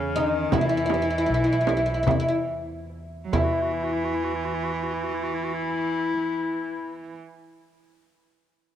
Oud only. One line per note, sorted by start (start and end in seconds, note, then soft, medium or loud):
0.00 0.15 C#4 medium
0.16 0.50 D#4 medium
0.53 0.60 E4 medium
0.61 0.68 E4 medium
0.69 0.76 E4 medium
0.77 0.85 E4 medium
0.86 0.93 E4 medium
0.94 1.01 E4 medium
1.02 1.09 E4 medium
1.11 1.17 E4 medium
1.18 1.25 E4 medium
1.26 1.33 E4 medium
1.34 1.42 E4 medium
1.44 1.51 E4 medium
1.53 1.60 E4 medium
1.61 1.67 E4 medium
1.69 1.76 E4 medium
1.77 1.85 E4 medium
1.86 1.93 E4 medium
1.94 2.02 E4 medium
2.03 2.10 E4 medium
2.11 2.18 E4 medium
2.20 2.27 E4 medium
2.28 2.37 E4 medium
3.33 7.19 E4 medium